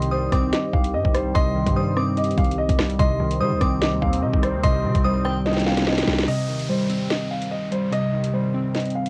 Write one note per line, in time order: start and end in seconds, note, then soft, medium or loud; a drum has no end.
0.00 0.31 C2 loud
0.00 0.73 C3 loud
0.00 0.94 D#3 medium
0.00 2.95 D#3 medium
0.00 2.95 C4 medium
0.00 6.24 G4 medium
0.00 closed hi-hat medium
0.11 1.13 G3 medium
0.11 0.50 C5 medium
0.11 0.31 D#6 medium
0.32 0.52 C2 loud
0.32 1.35 C4 medium
0.32 1.31 D6 medium
0.32 kick medium
0.32 cross-stick medium
0.32 closed hi-hat medium
0.53 0.72 D#5 medium
0.53 snare loud
0.53 closed hi-hat medium
0.73 0.95 C2 loud
0.73 0.93 F5 medium
0.73 kick loud
0.84 closed hi-hat medium
0.94 1.04 G2 loud
0.94 1.13 D#5 medium
1.05 1.34 C2 loud
1.05 kick medium
1.14 1.75 G3 medium
1.14 1.34 C5 medium
1.14 cross-stick loud
1.14 closed hi-hat medium
1.34 1.65 C2 loud
1.34 2.37 C3 medium
1.34 1.74 D#5 loud
1.34 1.73 C6 loud
1.34 kick loud
1.34 closed hi-hat medium
1.55 2.58 D#3 medium
1.66 2.35 G2 loud
1.66 kick medium
1.66 closed hi-hat medium
1.76 2.78 G3 medium
1.76 2.15 C5 medium
1.76 1.96 D#6 medium
1.97 2.99 C4 medium
1.97 2.96 D6 medium
1.97 cross-stick medium
2.17 2.37 D#5 medium
2.17 closed hi-hat medium
2.24 closed hi-hat medium
2.31 closed hi-hat medium
2.38 2.68 C2 loud
2.38 2.57 F5 medium
2.38 kick loud
2.38 closed hi-hat medium
2.44 closed hi-hat medium
2.51 closed hi-hat medium
2.58 2.97 D#5 medium
2.69 2.78 C2 loud
2.69 kick loud
2.69 closed hi-hat loud
2.79 2.99 C2 loud
2.79 2.99 G3 medium
2.79 cross-stick loud
2.79 snare loud
2.90 closed hi-hat medium
2.99 3.19 C2 loud
2.99 4.02 C3 loud
2.99 6.25 D#3 medium
2.99 6.25 C4 medium
2.99 3.38 D#5 loud
2.99 3.38 C6 loud
2.99 kick loud
2.99 closed hi-hat medium
3.20 3.42 C2 loud
3.20 4.23 D#3 medium
3.31 closed hi-hat medium
3.40 3.53 D#3 loud
3.40 4.41 G3 medium
3.40 3.79 C5 medium
3.40 3.60 D#6 medium
3.51 3.60 C2 loud
3.61 3.94 C2 loud
3.61 4.64 C4 medium
3.61 4.60 D6 medium
3.61 kick medium
3.61 cross-stick medium
3.61 closed hi-hat medium
3.81 4.01 D#5 medium
3.81 snare loud
3.81 closed hi-hat medium
3.93 4.02 D#2 loud
4.02 4.24 D#2 loud
4.02 4.21 F5 medium
4.02 kick loud
4.13 closed hi-hat medium
4.23 4.33 C3 loud
4.23 4.42 D#5 medium
4.34 4.56 C2 loud
4.34 kick medium
4.42 5.04 G3 medium
4.42 4.63 C5 medium
4.42 cross-stick loud
4.42 closed hi-hat medium
4.54 4.63 D#2 loud
4.64 4.86 C2 loud
4.64 5.67 C3 medium
4.64 5.02 D#5 loud
4.64 5.02 C6 loud
4.64 kick loud
4.64 closed hi-hat medium
4.84 4.95 C3 loud
4.84 5.87 D#3 medium
4.95 6.04 C2 loud
4.95 kick loud
4.95 closed hi-hat medium
5.05 6.06 G3 medium
5.05 5.43 C5 medium
5.05 5.24 D#6 loud
5.25 6.28 C4 medium
5.25 6.24 G5 medium
5.25 cross-stick medium
5.46 5.65 D#5 medium
5.46 snare medium
5.46 closed hi-hat soft
5.51 snare medium
5.51 closed hi-hat medium
5.57 snare medium
5.57 closed hi-hat medium
5.62 snare medium
5.66 5.86 F5 medium
5.66 snare medium
5.72 snare medium
5.77 snare medium
5.77 closed hi-hat medium
5.82 snare medium
5.87 6.26 D#5 medium
5.87 snare medium
5.93 snare medium
5.98 snare loud
5.98 closed hi-hat loud
6.03 snare medium
6.08 6.27 C2 loud
6.08 6.28 G3 medium
6.08 snare loud
6.13 snare loud
6.18 snare loud
6.18 closed hi-hat medium
6.23 snare loud
6.28 7.31 C3 loud
6.28 6.67 D#5 loud
6.28 closed hi-hat medium
6.28 downlifter medium
6.49 7.51 D#3 medium
6.59 closed hi-hat medium
6.69 7.70 G3 medium
6.69 7.08 C5 medium
6.90 7.92 C4 medium
6.90 closed hi-hat medium
7.10 7.30 D#5 medium
7.10 snare loud
7.10 closed hi-hat medium
7.31 7.50 F5 medium
7.42 closed hi-hat medium
7.51 7.71 D#5 medium
7.72 8.33 G3 medium
7.72 7.91 C5 medium
7.72 closed hi-hat medium
7.91 8.95 C3 medium
7.91 8.31 D#5 loud
7.91 closed hi-hat medium
8.13 9.09 D#3 medium
8.24 closed hi-hat medium
8.34 9.09 G3 medium
8.34 8.72 C5 medium
8.54 9.09 C4 medium
8.75 8.94 D#5 medium
8.75 snare medium
8.75 closed hi-hat medium
8.80 closed hi-hat medium
8.86 closed hi-hat medium
8.90 closed hi-hat medium
8.95 9.09 F5 medium
9.06 closed hi-hat medium